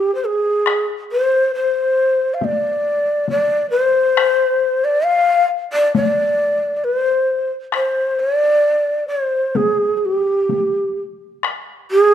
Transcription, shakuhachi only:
Already playing: G4
0.15 C5
0.26 G#4
1.12 C5
1.55 C5
2.34 F5
2.44 D5
3.30 D5
3.70 C5
4.84 D5
5.05 F5
5.73 D5
5.96 D5
6.77 D5
6.84 B4
6.97 C5
7.75 C5
8.20 D5
9.08 C5
9.56 G#4
9.97 G#4
10.05 G4
11.91 G#4

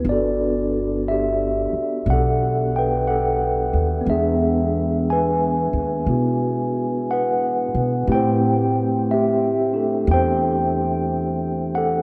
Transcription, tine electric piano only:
Already playing: B4
0.00 B3 D4
0.09 F#4 A4 D5
1.08 G4 E5
2.10 A4 F#5
2.76 B4 G5
3.08 A4 F#5
4.01 G#3 B3
4.08 D4 G#4 E5
5.10 B4 G#5
6.06 E4 F#4
7.11 B4 F#5
8.08 A3 C4 E4 G4
8.12 C5 G5
9.11 G4 E5
9.73 D4 G4 A4
10.11 C5 G5
11.75 A4 F#5

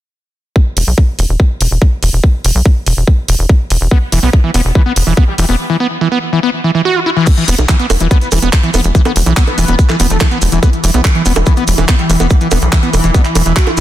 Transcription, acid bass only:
3.91 B3
4.12 E3
4.23 B3
4.44 E3
4.54 B3
4.75 E3
4.86 B3
5.07 E3
5.17 B3
5.38 E3
5.49 B3
5.70 E3
5.80 B3
6.01 E3
6.12 B3
6.33 E3
6.43 B3
6.64 E3
6.75 E3
6.85 F#4
6.96 E4
7.06 E4
7.17 E3
7.38 E3
7.48 B3
7.69 E3
7.80 B3
8.00 E3
8.11 B3
8.32 E3
8.42 B3
8.63 E3
8.74 B3
8.95 E3
9.05 B3
9.26 E3
9.37 B3
9.58 E3
9.68 B3
9.89 E3
10.00 B3
10.21 E3
10.31 B3
10.52 E3
10.63 B3
10.84 E3
10.94 B3
11.15 E3
11.26 B3
11.47 E3
11.57 B3
11.78 E3
11.89 B3
12.10 E3
12.20 B3
12.41 E3
12.52 B3
12.73 E3
12.83 B3
13.04 E3
13.14 B3
13.35 E3
13.46 E3
13.56 F#4
13.67 E4

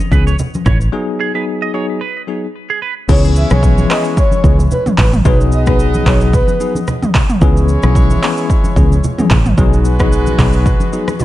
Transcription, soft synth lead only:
3.09 C#5
3.37 E5
3.51 C#5
3.91 D#5
4.17 C#5
4.71 B4
4.98 B4
5.26 B4
5.53 D#5
5.67 B4
6.07 C#5
6.34 B4

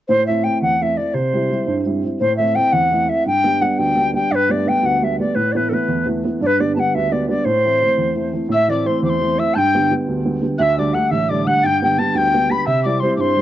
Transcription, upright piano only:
0.09 A2
0.28 A3 C4 E4
0.44 A3 C4 E4
0.62 E2
0.81 A3 C4 E4
0.97 A3 C4 E4
1.14 C3
1.33 G3 C4 E4
1.50 G3 C4 E4
1.67 G2
1.86 G3 C4 E4
2.03 G3 C4 E4
2.21 A2
2.39 A3 C4 E4
2.56 A3 C4 E4
2.73 E2
2.92 A3 C4 E4
3.08 A3 C4 E4
3.26 G2
3.44 G3 B3 D4
3.61 G3 B3 D4
3.79 D2
3.96 G3 B3 D4
4.13 G3 B3 D4
4.31 G2
4.49 G3 A3 B3
4.66 G3 A3 B3
4.83 D2
5.02 G3 A3 B3
5.19 G3 A3 B3
5.35 A2
5.54 E3 A3 B3
5.71 E3 A3 B3
5.88 E2
6.06 E3 A3 B3
6.24 E3 A3 B3
6.41 G2
6.59 D3 G3 B3
6.76 D3 G3 B3
6.95 D2
7.11 D3 G3 B3
7.28 D3 G3 B3
7.45 A2
7.65 E3 A3 C4
7.81 E3 A3 C4
7.98 E2
8.15 E3 A3 C4
8.32 E3 A3 C4
8.49 A2
8.68 E3 A3 C4
8.85 E3 A3 C4
9.02 E2
9.21 E3 A3 C4
9.38 E3 A3 C4
9.56 G2
9.74 D3 G3 B3
9.91 D3 G3 B3
10.08 D2
10.25 D3 G3 B3
10.42 D3 G3 B3
10.59 D2
10.77 D3 G3 A3
10.94 D3 G3 A3
11.11 A1
11.30 D3 G3 A3
11.46 D3 G3 A3
11.64 G2
11.82 D3 G3 B3
11.98 D3 G3 B3
12.15 D2
12.33 D3 G3 B3
12.50 D3 G3 B3
12.67 C3
12.85 G3 C4 E4
13.02 G3 C4 E4
13.18 G2
13.37 G3 C4 E4

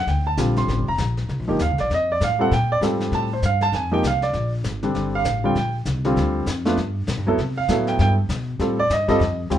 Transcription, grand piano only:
0.08 G5
0.27 A5
0.37 D3 G3 C4 F4
0.58 C6
0.88 A#5
1.48 F3 A#3 D#4 G4
1.62 F5
1.80 D5
1.94 D#5
2.12 D5
2.24 F5
2.39 G3 C4 F4 A4 F#5
2.53 G5
2.72 D5
2.81 G3 C4 F4 A4
3.15 A5
3.33 C5
3.46 F5
3.62 A5
3.75 G#5
3.91 F3 A#3 D#4 G4 G5
4.07 F5
4.23 D5
4.83 D3 G3 C4 D4
5.15 F5
5.44 D3 G3 C4 F4 G5
5.57 G5
6.05 D3 G3 C4 F4
6.66 A3 B3 D4 F4
7.27 F#3 B3 E4 A4
7.58 F5
7.69 F#3 B3 E4 A4
7.88 G5
8.01 G5
8.59 G3 C4 F4 A4
8.79 D5
8.93 D#5
9.08 G3 C4 F4 A4 D#5
9.50 G3 C4 F4 G4

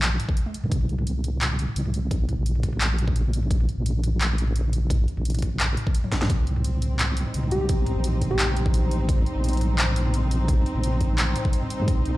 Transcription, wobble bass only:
Already playing: A#1
0.64 G2
0.72 C2
1.76 C2
2.38 A#1
3.77 A#1
5.17 A#1
6.22 G2
6.30 C2
7.34 C2
7.96 A#1
9.35 A#1
10.75 A#1
11.80 G2
11.88 C2

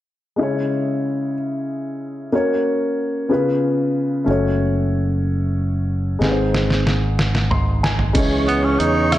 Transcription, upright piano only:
0.36 C#3 G#3 C#4 E4
0.40 G#4 C#5
2.32 A#3 C#4 F#4 A#4 C#5
3.29 C#3 B3 C#4 F4 G#4 B4
4.24 A3 C#4 F#4
4.29 A4 C#5
6.19 G#2 G#3 C4 D#4
6.24 G#4 B4
6.32 C5
7.51 C6
7.83 G#5
8.13 C#3 E3 G#3 C#4
8.18 G#4 C#5

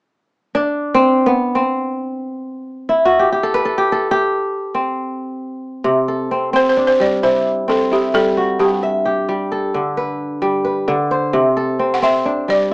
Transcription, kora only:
0.55 D4
0.94 C4
1.26 B3
1.55 C4
2.89 E4
3.05 F#4
3.19 G4
3.32 G4
3.43 A4
3.54 B4
3.65 A4
3.78 G4
3.92 A4
4.11 G4
4.75 C4
5.84 C3
6.08 A4
6.31 C4
6.53 C4
6.77 D4
7.00 G3
7.23 E4
7.68 C4
7.91 E4
8.14 G3
8.37 F#4
8.59 G2
8.83 E5
9.05 G4
9.29 G3
9.52 A4
9.74 D3
9.97 B4
10.42 G3
10.65 B4
10.88 D3
11.11 C5
11.33 C3
11.57 A4
11.79 C4
12.02 C4
12.25 D4
12.48 G3

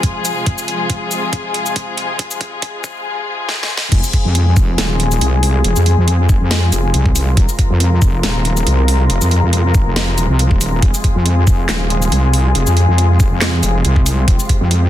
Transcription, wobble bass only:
3.92 F1
4.25 F2
4.57 F1
4.78 D#1
5.21 C2
5.64 F1
5.76 F2
5.98 F2
6.29 G1
6.41 F2
6.72 F1
6.94 C2
7.37 F1
7.70 F2
8.02 F1
8.23 D#1
8.67 C2
9.10 F1
9.21 F2
9.43 F2
9.75 G1
9.86 F1
10.29 C2
10.51 D#1
10.82 F1
11.16 F2
11.47 F1
11.69 D#1
12.12 C2
12.55 F1
12.67 F2
12.88 F2
13.20 G1
13.31 F2
13.63 F1
13.85 C2
14.28 F1
14.61 F2

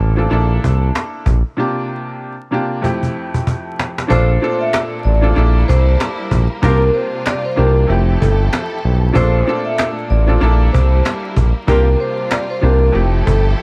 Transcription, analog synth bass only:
0.00 A1
0.32 A#1
0.64 C2
1.26 A#1
4.10 A#1
5.05 A1
5.37 A#1
5.69 C2
6.31 A#1
6.63 C2
7.58 C2
7.89 F1
8.22 G1
8.84 B1
9.16 A#1
10.11 A1
10.42 A#1
10.75 C2
11.37 A#1
11.68 C2
12.63 C2
12.95 F1
13.27 G1

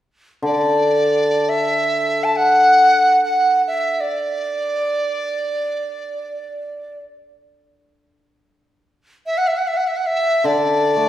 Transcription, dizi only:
0.45 D5
1.49 E5
2.24 A5
2.36 F#5
3.25 F#5
3.67 E5
4.01 D5
9.26 E5
9.38 F#5
9.48 E5
9.57 F#5
9.68 E5
9.77 F#5
9.88 E5
9.97 F#5
10.06 E5
10.46 D5

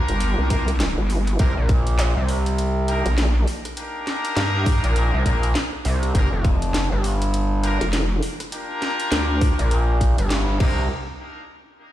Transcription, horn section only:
Already playing: A#3 D4 F4 G4 A#4
0.50 A#3 D4 F4 G4 A#4
1.40 A#3 D4 D#4 G4 A#4
2.88 A#3 D4 D#4 G4 A#4
3.77 A#3 D4 D#4 G4 A#4
5.26 A#3 D4 D#4 G4 A#4
6.15 A#3 D4 F4 G4 A#4
7.63 A#3 D4 F4 G4 A#4
8.53 A#3 D4 F4 G4 A#4
10.60 A#3 D4 D#4 G4 A#4

